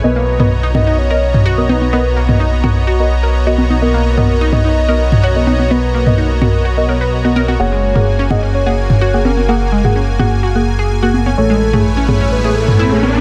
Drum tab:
T2 |---o--o----o----|---o--o---------|---o--o----o----|---o--o---------|
CG |------o-------oo|------o-------oo|------o-------oo|------o-------oo|

T2 |---o--o----o----|---o--o---------|---o--o----o----|
CG |------o-------oo|------o-------oo|------o-------oo|